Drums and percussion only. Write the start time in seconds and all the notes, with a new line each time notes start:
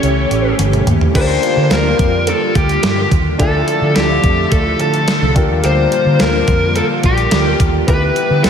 0.03 closed hi-hat
0.31 closed hi-hat
0.59 closed hi-hat, high tom
0.73 closed hi-hat, mid tom
0.87 closed hi-hat, mid tom
1.01 floor tom
1.15 kick, closed hi-hat, crash, cowbell
1.43 closed hi-hat
1.70 snare, closed hi-hat, cowbell
1.99 kick, closed hi-hat
2.27 closed hi-hat, cowbell
2.55 kick, closed hi-hat
2.69 closed hi-hat
2.83 snare, closed hi-hat, cowbell
3.12 kick, closed hi-hat
3.40 kick, closed hi-hat, cowbell
3.68 closed hi-hat
3.95 snare, closed hi-hat, cowbell
4.24 kick, closed hi-hat
4.52 kick, closed hi-hat, cowbell
4.79 closed hi-hat
4.94 closed hi-hat
5.08 snare, closed hi-hat, cowbell
5.36 kick, closed hi-hat
5.64 closed hi-hat, cowbell
5.92 closed hi-hat
6.19 snare, closed hi-hat, cowbell
6.48 kick, closed hi-hat
6.76 closed hi-hat, cowbell
7.03 kick, closed hi-hat
7.18 closed hi-hat
7.31 snare, closed hi-hat, cowbell
7.60 kick, closed hi-hat
7.88 kick, closed hi-hat, cowbell
8.16 closed hi-hat
8.44 snare, closed hi-hat, cowbell